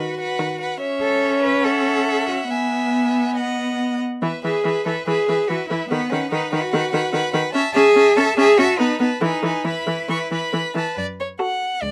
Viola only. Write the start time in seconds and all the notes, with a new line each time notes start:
Already playing: D#3
0.40 D#3
0.81 C#4
2.49 B3
4.22 E3
4.44 E3
4.65 E3
4.86 E3
5.07 E3
5.29 E3
5.50 E3
5.71 E3
5.91 D#3
6.12 D#3
6.32 D#3
6.53 D#3
6.74 D#3
6.93 D#3
7.13 D#3
7.34 D#3
7.54 C#4
7.75 C#4
7.96 C#4
8.17 C#4
8.37 C#4
8.58 C#4
8.79 B3
9.00 B3
9.21 E3
9.43 E3
9.65 E3
9.87 E3
10.09 E3
10.31 E3
10.53 E3
10.75 E3
11.39 F#4